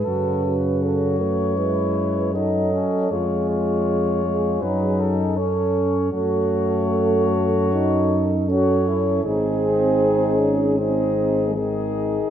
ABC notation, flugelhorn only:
X:1
M:4/4
L:1/8
Q:1/4=79
K:F#dor
V:1 name="Flugelhorn"
A z c4 d2 | c c3 B A c2 | c6 c2 | G4 G2 G2 |]